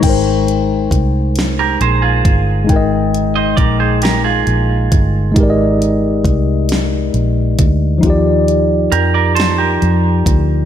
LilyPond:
<<
  \new Staff \with { instrumentName = "Clean electric guitar" } { \time 6/8 \key aes \lydian \tempo 4. = 45 r4. r16 <g' bes'>16 <aes' c''>16 <f' aes'>8.~ | <f' aes'>8. <c'' ees''>16 <bes' d''>16 <aes' c''>16 <g' bes'>16 <f' aes'>4~ <f' aes'>16~ | <f' aes'>16 r2 r8. | r4 <g' bes'>16 <bes' d''>16 <a' c''>16 <g' bes'>4~ <g' bes'>16 | }
  \new Staff \with { instrumentName = "Tine electric piano" } { \time 6/8 \key aes \lydian <aes ees' bes' c'' g''>2. | <aes ees' bes' ees'' g''>2. | <aes ees' g' bes' d'' ees''>2. | <f ees' f' g' d''>2. | }
  \new Staff \with { instrumentName = "Fingered electric bass" } { \clef bass \time 6/8 \key aes \lydian aes,,4 c,4 bes,,8 g,,8 | aes,,4 bes,,4 bes,,8 g,,8 | aes,,4 c,4 bes,,8 d,8 | ees,4 f,4 f,8 d,8 | }
  \new DrumStaff \with { instrumentName = "Drums" } \drummode { \time 6/8 <cymc hh bd>8 hh8 <hh bd>8 <hh sn>8 hh8 <hh bd>8 | <hh bd>8 hh8 <hh bd>8 <hh sn>8 hh8 <hh bd>8 | <hh bd>8 hh8 <hh bd>8 <hh sn>8 hh8 <hh bd>8 | <hh bd>8 hh8 hh8 <hh sn>8 hh8 <hh bd>8 | }
>>